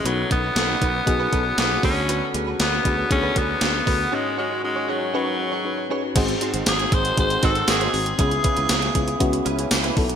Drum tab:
CC |----------------|----------------|----------------|x---------------|
HH |x-x-x-x-x-x-x-o-|x-x-x-x-x-x-x-o-|----------------|xxxxxxxxxxxxxxox|
TB |----------------|----------------|----------------|----x-------x---|
SD |----o-------o---|----o-------o---|----------------|----o-------o---|
BD |--o---o-o-o---o-|------o-o-o---o-|----------------|o-----o-o-o-----|

CC |----------------|
HH |xxxxxxxxxxxxxxox|
TB |----x-------x---|
SD |----o-------o---|
BD |o-o---o-o-----o-|